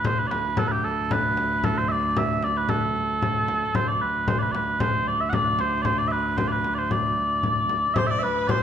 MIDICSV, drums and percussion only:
0, 0, Header, 1, 2, 480
1, 0, Start_track
1, 0, Tempo, 527241
1, 529, Time_signature, 2, 2, 24, 8
1, 7855, End_track
2, 0, Start_track
2, 0, Title_t, "Frame drum"
2, 41, Note_on_c, 9, 64, 86
2, 132, Note_off_c, 9, 64, 0
2, 285, Note_on_c, 9, 64, 71
2, 376, Note_off_c, 9, 64, 0
2, 518, Note_on_c, 9, 64, 88
2, 609, Note_off_c, 9, 64, 0
2, 1009, Note_on_c, 9, 64, 86
2, 1100, Note_off_c, 9, 64, 0
2, 1250, Note_on_c, 9, 64, 63
2, 1341, Note_off_c, 9, 64, 0
2, 1490, Note_on_c, 9, 64, 87
2, 1581, Note_off_c, 9, 64, 0
2, 1971, Note_on_c, 9, 64, 86
2, 2062, Note_off_c, 9, 64, 0
2, 2208, Note_on_c, 9, 64, 59
2, 2299, Note_off_c, 9, 64, 0
2, 2446, Note_on_c, 9, 64, 79
2, 2537, Note_off_c, 9, 64, 0
2, 2691, Note_on_c, 9, 64, 26
2, 2782, Note_off_c, 9, 64, 0
2, 2934, Note_on_c, 9, 64, 78
2, 3025, Note_off_c, 9, 64, 0
2, 3172, Note_on_c, 9, 64, 63
2, 3263, Note_off_c, 9, 64, 0
2, 3411, Note_on_c, 9, 64, 79
2, 3502, Note_off_c, 9, 64, 0
2, 3893, Note_on_c, 9, 64, 89
2, 3984, Note_off_c, 9, 64, 0
2, 4139, Note_on_c, 9, 64, 61
2, 4230, Note_off_c, 9, 64, 0
2, 4372, Note_on_c, 9, 64, 87
2, 4463, Note_off_c, 9, 64, 0
2, 4851, Note_on_c, 9, 64, 87
2, 4942, Note_off_c, 9, 64, 0
2, 5087, Note_on_c, 9, 64, 69
2, 5178, Note_off_c, 9, 64, 0
2, 5324, Note_on_c, 9, 64, 80
2, 5415, Note_off_c, 9, 64, 0
2, 5805, Note_on_c, 9, 64, 81
2, 5896, Note_off_c, 9, 64, 0
2, 6049, Note_on_c, 9, 64, 58
2, 6140, Note_off_c, 9, 64, 0
2, 6289, Note_on_c, 9, 64, 74
2, 6380, Note_off_c, 9, 64, 0
2, 6767, Note_on_c, 9, 64, 74
2, 6858, Note_off_c, 9, 64, 0
2, 7005, Note_on_c, 9, 64, 60
2, 7096, Note_off_c, 9, 64, 0
2, 7245, Note_on_c, 9, 64, 92
2, 7336, Note_off_c, 9, 64, 0
2, 7729, Note_on_c, 9, 64, 88
2, 7820, Note_off_c, 9, 64, 0
2, 7855, End_track
0, 0, End_of_file